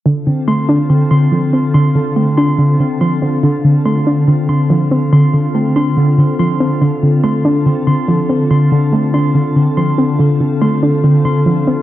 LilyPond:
<<
  \new Staff \with { instrumentName = "Ambient pad" } { \time 4/4 \key d \minor \tempo 4 = 142 << { <d a'>1~ | <d a'>1~ | <d a'>1~ | <d a'>1 |
<d a'>1~ | <d a'>1~ | <d a'>1 | } \\ { <c' f'>1~ | <c' f'>1~ | <c' f'>1~ | <c' f'>1~ |
<c' f'>1~ | <c' f'>1 | <c' f'>1 | } >> }
  \new Staff \with { instrumentName = "Tine electric piano" } { \time 4/4 \key d \minor d8 c'8 c'''8 d8 c'8 c'''8 d4 | c'''8 d8 c'8 c'''8 d8 c'8 c'''8 d8 | d8 c'8 c'''8 d8 c'8 c'''8 d4 | c'''8 d8 c'8 c'''8 d8 c'8 c'''8 d8 |
d8 c'8 c'''8 d8 c'8 c'''8 d4 | c'''8 d8 c'8 c'''8 d8 c'8 c'''8 d8 | d8 c'8 c'''8 d8 c'8 c'''8 d4 | }
  \new Staff \with { instrumentName = "Synth pluck" } { \clef bass \time 4/4 \key d \minor d8 d8 a8 d'8 d8 d8 f8 c'8 | d8 d8 a8 d'8 d8 d8 f8 c'8 | d8 d8 a8 d'8 d8 d8 f8 c'8 | d8 d8 a8 d'8 d8 d8 f8 c'8 |
d8 d8 a8 d'8 d8 d8 f8 c'8 | d8 d8 a8 d'8 d8 d8 f8 c'8 | d8 d8 a8 d'8 d8 d8 f8 c'8 | }
>>